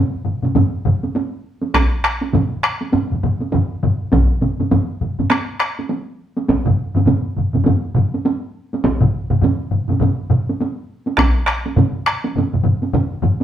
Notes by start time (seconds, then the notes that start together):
0.25 taiko low-mid, taiko mid
0.42 taiko low-mid, taiko mid, taiko high
0.55 taiko low-mid, taiko mid, taiko high
0.85 taiko low-mid, taiko mid
1.03 taiko high
1.15 taiko high
1.63 taiko high
1.74 taiko rim, taiko, taiko high
2.04 taiko rim
2.21 taiko high
2.33 taiko low-mid, taiko mid, taiko high
2.63 taiko rim
2.81 taiko high
2.92 taiko low-mid, taiko mid, taiko high
3.11 taiko low-mid, taiko mid
3.23 taiko low-mid, taiko mid
3.40 taiko high
3.52 taiko low-mid, taiko mid, taiko high
3.83 taiko low-mid, taiko mid
4.12 taiko, taiko low-mid, taiko mid, taiko high
4.42 taiko low-mid, taiko mid, taiko high
4.60 taiko low-mid, taiko mid, taiko high
4.71 taiko low-mid, taiko mid, taiko high
5.01 taiko low-mid, taiko mid
5.19 taiko low-mid, taiko mid, taiko high
5.30 taiko rim, taiko high
5.32 taiko rim
5.60 taiko rim
5.79 taiko high
5.90 taiko high
6.37 taiko high
6.48 taiko, taiko high
6.65 taiko low-mid, taiko mid
6.95 taiko low-mid, taiko mid, taiko high
7.06 taiko low-mid, taiko mid, taiko high
7.36 taiko low-mid, taiko mid
7.53 taiko low-mid, taiko mid, taiko high
7.64 taiko low-mid, taiko mid, taiko high
7.95 taiko low-mid, taiko mid
8.14 taiko high
8.25 taiko high
8.73 taiko high
8.84 taiko, taiko high
9.01 taiko low-mid, taiko mid
9.30 taiko low-mid, taiko mid
9.41 taiko low-mid, taiko mid, taiko high
9.71 taiko low-mid, taiko mid
9.89 taiko low-mid, taiko mid, taiko high
10.00 taiko low-mid, taiko mid, taiko high
10.30 taiko low-mid, taiko mid
10.49 taiko high
10.61 taiko high
11.06 taiko high
11.17 taiko rim, taiko, taiko high
11.19 taiko rim
11.47 taiko rim
11.66 taiko high
11.77 taiko low-mid, taiko mid, taiko high
12.06 taiko rim
12.25 taiko high
12.35 taiko low-mid, taiko mid, taiko high
12.53 taiko low-mid, taiko mid
12.63 taiko low-mid, taiko mid
12.82 taiko high
12.93 taiko low-mid, taiko mid, taiko high
13.22 taiko low-mid, taiko mid
13.40 taiko high